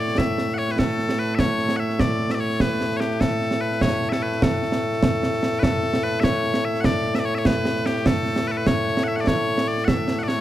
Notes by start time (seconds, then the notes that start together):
Already playing: A2 A3 D5
0.08 snare
0.18 E5, concert bass drum, snare
0.38 snare
0.48 snare
0.54 C#5 F#5
0.69 B4, snare
0.79 A4, concert bass drum, snare
0.99 snare
1.09 snare
1.19 B4
1.35 E5, concert bass drum, snare
1.39 C#5
1.59 snare
1.69 snare
1.76 E5 F#5
1.90 snare
1.99 D5, concert bass drum, snare
2.30 E5, snare
2.34 D5
2.40 C#5
2.50 snare
2.60 B4, concert bass drum, snare
2.81 snare
2.90 snare
2.97 G4 C#5, snare
3.11 snare
3.21 A4, concert bass drum, snare
3.41 snare
3.51 snare
3.61 B4
3.72 snare
3.81 C#5, concert bass drum, snare
4.02 snare
4.09 A4 E5, snare
4.22 B4
4.32 snare
4.42 A4, concert bass drum, snare
4.62 snare
4.72 snare
4.92 snare
5.03 concert bass drum, snare
5.23 snare
5.33 snare
5.43 snare
5.53 snare
5.59 B4, concert bass drum, snare
5.63 A4
5.83 snare
5.93 snare
6.03 B4
6.20 C#5 E5, concert bass drum, snare
6.44 snare
6.54 snare
6.65 E5
6.74 snare
6.81 F#5, concert bass drum, snare
6.85 D5
7.15 E5, snare
7.19 D5
7.25 C#5
7.35 C#5 E5, snare
7.45 B4, concert bass drum, snare
7.65 snare
7.76 snare
7.86 G4, snare
7.96 snare
8.06 A4, concert bass drum, snare
8.26 snare
8.36 snare
8.47 A4 B4
8.57 B4
8.67 C#5, concert bass drum, snare
8.87 snare
8.97 snare
9.04 F#5
9.08 E5
9.16 F#5, snare
9.20 D5
9.27 C#5, concert bass drum, snare
9.58 snare
9.68 D5
9.78 snare
9.85 E5 F#5, concert bass drum, snare
10.08 snare
10.18 F#5, snare
10.23 D5
10.28 C#5, snare